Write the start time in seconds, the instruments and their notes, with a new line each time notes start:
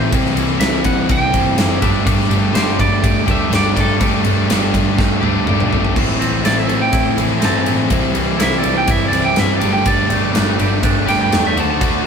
Already playing: overdriven electric guitar A3 C4 E4
0.10 double bass C2, overdriven electric guitar C3 E3 G3 C4 E4, kick, ride
0.25 snare
0.35 double bass C2, overdriven electric guitar G3 C4 E4, ride
0.59 double bass C2, overdriven electric guitar C3 E3 G3 C4 E4, clean electric guitar E5, snare, ride
0.84 double bass C2, clean electric guitar F#5, kick, ride
1.08 double bass C2, overdriven electric guitar C3 E3 G3 C4 E4, clean electric guitar G5, kick, ride
1.32 double bass G1, overdriven electric guitar G3 C4 E4, kick, ride
1.56 double bass F#1, overdriven electric guitar E3 G3 C4 E4, snare, ride
1.82 double bass G1, overdriven electric guitar G3 A3 D4 G4, clean electric guitar E5, kick, ride
2.05 double bass G1, overdriven electric guitar G3 A3 D4 G4, kick, ride
2.20 snare
2.29 double bass G1, overdriven electric guitar A3 D4 G4, ride
2.53 double bass G1, overdriven electric guitar G3 A3 D4 G4, clean electric guitar C5, snare, ride
2.79 double bass G1, clean electric guitar D5, kick, ride
3.01 double bass G1, overdriven electric guitar G3 A3 D4 G4, kick, ride
3.24 double bass D2, overdriven electric guitar A3 D4 G4
3.28 clean electric guitar E5, kick, ride
3.49 double bass G1, overdriven electric guitar G3 A3 D4 G4, ride
3.54 clean electric guitar D5, snare
3.76 double bass G1, overdriven electric guitar A3 D4 G4, kick, snare, ride
3.80 clean electric guitar A4
3.99 double bass G1, overdriven electric guitar G3 A3 D4 G4, kick, ride
4.24 double bass G1, overdriven electric guitar A3 D4 G4, ride
4.48 double bass G1, overdriven electric guitar G3 A3 D4 G4, snare, ride
4.74 double bass G1, kick, ride
4.97 double bass G1, overdriven electric guitar G3 A3 D4 G4, kick, snare
5.21 double bass D2, overdriven electric guitar A3 D4 G4, high tom
5.46 double bass G1, overdriven electric guitar G3 A3 D4 G4, mid tom
5.60 mid tom
5.71 double bass G1, overdriven electric guitar A3 D4 G4, floor tom
5.85 floor tom
5.96 double bass A1, overdriven electric guitar A2 E3 A3 C4 E4, kick, crash
6.20 double bass A1, overdriven electric guitar A3 C4 E4, ride
6.43 double bass A1, overdriven electric guitar A2 E3 A3 C4 E4, clean electric guitar D5, snare, ride
6.58 clean electric guitar E5, snare
6.67 double bass A1, overdriven electric guitar A2 E3 A3 C4 E4, clean electric guitar A4, ride
6.82 clean electric guitar G5
6.91 double bass A1, overdriven electric guitar E3 A3 C4 E4, kick, ride
7.16 double bass A1, overdriven electric guitar A2 E3 A3 C4 E4, ride
7.40 double bass G2, overdriven electric guitar E3 A3 C4 E4, snare, ride
7.45 clean electric guitar A5
7.63 double bass A2, clean electric guitar E3, overdriven electric guitar C4 E4, ride
7.68 overdriven electric guitar A3
7.89 double bass C2, overdriven electric guitar C3 E3 G3 C4 E4, kick, ride
8.13 double bass C2, overdriven electric guitar G3 C4 E4, ride
8.37 double bass C2, overdriven electric guitar C3 E3 G3 C4 E4, snare, ride
8.43 clean electric guitar E5
8.53 snare
8.58 overdriven electric guitar E4, clean electric guitar D5
8.62 double bass C2, overdriven electric guitar C3 E3 G3 C4, clean electric guitar A4, ride
8.77 clean electric guitar G5
8.87 double bass G1, overdriven electric guitar E3 G3 C4 E4, clean electric guitar E5, kick, ride
9.08 overdriven electric guitar C4 E4, clean electric guitar D5
9.13 double bass C2, overdriven electric guitar C3 E3 G3, snare, ride
9.24 clean electric guitar G5
9.36 double bass G2, overdriven electric guitar E3 G3 C4 E4, clean electric guitar E5, snare, ride
9.56 clean electric guitar D5
9.60 double bass G1, overdriven electric guitar G3 A3 D4 G4, ride
9.73 clean electric guitar G5
9.84 double bass G1, overdriven electric guitar G3 A3 D4 G4, clean electric guitar D5, kick, ride
10.09 double bass G1, overdriven electric guitar A3 D4 G4, ride
10.32 double bass G1, overdriven electric guitar G3 A3 D4 G4, snare, ride
10.58 double bass G1, overdriven electric guitar G3 A3 D4 G4, ride
10.82 double bass G1, overdriven electric guitar G3 A3 D4 G4, kick, ride
11.07 double bass G1, overdriven electric guitar G3 A3 D4 G4, clean electric guitar G5, snare, ride
11.22 clean electric guitar G5
11.31 double bass E2, overdriven electric guitar G3 A3 D4 G4, snare, ride
11.47 clean electric guitar E5
11.56 double bass D2, overdriven electric guitar D3 A3 D4 F#4, ride
11.60 clean electric guitar A5
11.70 clean electric guitar A5
11.80 double bass D2, overdriven electric guitar D3 A3 D4 F#4, kick, ride
12.03 overdriven electric guitar F#4